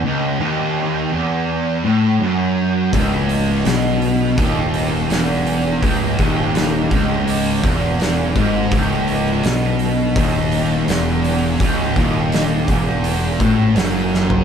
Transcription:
<<
  \new Staff \with { instrumentName = "Distorted electric guitar" } { \clef bass \time 4/4 \key cis \minor \tempo 4 = 83 cis,8 dis,4 e,4 a,8 fis,4 | cis,4 b,4 dis,4 e,4 | cis,8 dis,4 cis,4 e,4 gis,8 | cis,4 b,4 dis,4 e,4 |
cis,8 dis,4 e,4 a,8 fis,4 | }
  \new Staff \with { instrumentName = "Distorted electric guitar" } { \clef bass \time 4/4 \key cis \minor cis,8 dis,4 e,4 a,8 fis,4 | cis,4 b,4 dis,4 e,4 | cis,8 dis,4 cis,4 e,4 gis,8 | cis,4 b,4 dis,4 e,4 |
cis,8 dis,4 e,4 a,8 fis,4 | }
  \new Staff \with { instrumentName = "Fingered electric bass" } { \clef bass \time 4/4 \key cis \minor r1 | cis,,4 b,,4 dis,,4 e,,4 | cis,,8 dis,,4 cis,,4 e,,4 gis,,8 | cis,,4 b,,4 dis,,4 e,,4 |
cis,,8 dis,,4 e,,4 a,,8 fis,,4 | }
  \new DrumStaff \with { instrumentName = "Drums" } \drummode { \time 4/4 r4 r4 r4 r4 | <hho bd>8 hho8 <hho sn>8 hho8 <hho bd>8 hho8 <hho sn>8 hho8 | <hho bd>8 <hho bd>8 <hho sn>8 <hho bd>8 hho8 <hho bd>8 <hho sn>8 <hho bd>8 | <hho bd>8 hho8 <hho sn>8 hho8 <hho bd>8 hho8 <hho sn>8 hho8 |
<hho bd>8 <hho bd>8 <hho sn>8 <hho bd>8 hho8 <hho bd>8 <hho sn>8 sn16 tomfh16 | }
>>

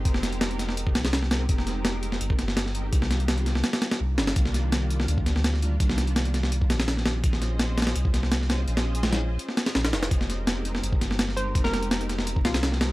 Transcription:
<<
  \new Staff \with { instrumentName = "Synth pluck" } { \time 4/4 \key f \minor \tempo 4 = 167 r1 | r1 | r1 | r1 |
r1 | r1 | r1 | r2. r8 c''8 |
r16 bes'16 bes'16 r4. r16 f'4. | }
  \new Staff \with { instrumentName = "String machine" } { \time 4/4 \key f \minor <aes c' ees' g' bes'>2. r4 | <aes c' ees' g' bes'>2. r4 | <ees g bes d' f'>2. r4 | <ees g bes d' f'>2. r4 |
r1 | <des' f' aes' c'' ees''>2. r4 | <des' f' aes' c'' ees''>2. r4 | <aes c' ees' g' bes'>2. r4 |
<aes c' ees' g' bes'>2. r4 | }
  \new Staff \with { instrumentName = "Sub bass" } { \clef bass \time 4/4 \key f \minor f,,2~ f,,8 c,4. | f,,2 g,,8 g,,4. | c,2 r4 c,8 g,,8 | c,2 d,8 d,4. |
c,2~ c,8 bes,,4. | bes,,2 c,8 c,4. | bes,,2 r4 bes,,8 f,,8 | f,,2 g,,8 g,,4. |
f,,2~ f,,8 c,4. | }
  \new DrumStaff \with { instrumentName = "Drums" } \drummode { \time 4/4 <hh bd>16 sn16 <hh sn>16 hh16 <hh sn>16 hh16 <hh sn>16 sn16 hh16 bd16 <hh sn>16 <hh sn>16 <hh sn>16 sn16 <hh sn>8 | <hh bd>16 sn16 <hh sn>8 <hh sn>8 hh16 sn16 hh16 bd16 <hh sn>16 sn16 <hh sn>16 sn16 hh8 | <hh bd>16 sn16 <hh sn>16 hh16 <hh sn>16 hh16 <hh sn>16 sn16 <hh sn>16 <hh sn>16 <hh sn>16 <hh sn>16 r8 <hh sn>16 <hh sn>16 | <hh bd>16 sn16 <hh sn>8 <hh sn>8 hh16 sn16 hh16 bd16 <hh sn>16 sn16 <hh sn>16 sn16 hh8 |
<hh bd>16 sn16 <hh sn>16 hh16 <hh sn>16 hh16 <hh sn>16 sn16 hh16 bd16 <hh sn>16 <hh sn>16 <hh sn>16 sn16 <hh sn>8 | <hh bd>16 sn16 <hh sn>8 <hh sn>8 <hh sn>32 <hh sn>32 <hh sn>16 hh16 bd16 <hh sn>16 sn16 <hh sn>16 sn16 <hh sn>8 | hh16 <hh sn>8 hh16 <hh sn>16 <hh sn>8. hh16 sn16 <hh sn>16 <hh sn>16 <hh sn>16 <hh sn>16 <hh sn>16 <hh sn>16 | <hh bd>16 sn16 <hh sn>8 <hh sn>8 hh16 sn16 hh16 bd16 <hh sn>16 sn16 <hh sn>16 sn16 hh8 |
<hh bd>16 sn16 <hh sn>16 hh16 <hh sn>16 hh16 <hh sn>16 sn16 hh16 bd16 <hh sn>16 <hh sn>16 <hh sn>16 sn16 <hh sn>8 | }
>>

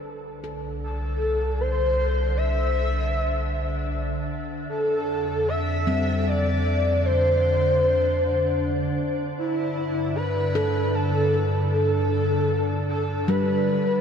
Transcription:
<<
  \new Staff \with { instrumentName = "Soft synth lead" } { \time 3/4 \key c \major \tempo 4 = 77 r4 a'4 c''4 | e''2 r4 | a'4 e''4 d''4 | c''2~ c''8 r8 |
e'4 b'4 a'4 | a'4. a'8 b'4 | }
  \new Staff \with { instrumentName = "Handpan" } { \time 3/4 \key c \major r8 a'2~ a'8~ | a'8 r2 r8 | r4. c'4.~ | c'4. r4. |
r4. a'4.~ | a'4. r4. | }
  \new Staff \with { instrumentName = "Handpan" } { \clef bass \time 3/4 \key c \major g4 r2 | r2. | r4. g4.~ | g4. r4. |
r2. | r2 g4 | }
  \new Staff \with { instrumentName = "Synth drone" } { \clef bass \time 3/4 \key c \major <d d'>2.~ | <d d'>2.~ | <d d'>2.~ | <d d'>2.~ |
<d d'>2.~ | <d d'>2. | }
  \new Staff \with { instrumentName = "Analog synth bass" } { \clef bass \time 3/4 \key c \major c,2.~ | c,2. | f,2.~ | f,2. |
g,2.~ | g,2. | }
>>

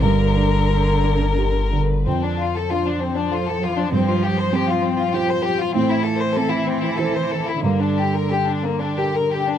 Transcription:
<<
  \new Staff \with { instrumentName = "Violin section" } { \time 3/4 \key f \major \tempo 4 = 94 bes'2~ bes'8. r16 | c'16 d'16 f'16 a'16 f'16 d'16 c'16 d'16 f'16 a'16 f'16 d'16 | c'16 f'16 g'16 c''16 g'16 f'16 c'16 f'16 g'16 c''16 g'16 f'16 | c'16 e'16 a'16 c''16 a'16 e'16 c'16 e'16 a'16 c''16 a'16 e'16 |
bes16 d'16 g'16 bes'16 g'16 d'16 bes16 d'16 g'16 bes'16 g'16 d'16 | }
  \new Staff \with { instrumentName = "Grand piano" } { \time 3/4 \key f \major g,8 d'8 bes'8 d'8 g'8 d8 | f,4 d'4 <a' c''>4 | g,4 c'4 <f' c''>4 | a,4 c'4 <e' c''>4 |
g,4 d'4 <g' bes'>4 | }
  \new Staff \with { instrumentName = "Cello" } { \clef bass \time 3/4 \key f \major d2~ d8 r8 | f2.~ | f2. | e2. |
d2~ d8 r8 | }
  \new Staff \with { instrumentName = "Sub bass" } { \clef bass \time 3/4 \key f \major g,,2. | r2. | r2. | r2. |
r2. | }
>>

